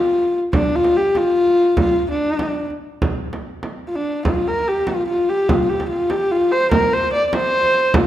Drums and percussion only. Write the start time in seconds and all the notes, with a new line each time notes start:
0.23 frame drum
0.53 frame drum
0.84 frame drum
1.15 frame drum
1.46 frame drum
1.77 frame drum
2.09 frame drum
2.39 frame drum
2.70 frame drum
3.02 frame drum
3.33 frame drum
3.63 frame drum
3.94 frame drum
4.25 frame drum
4.56 frame drum
4.87 frame drum
5.18 frame drum
5.49 frame drum
5.80 frame drum
6.10 frame drum
6.41 frame drum
6.71 frame drum
7.02 frame drum
7.33 frame drum
7.63 frame drum
7.94 frame drum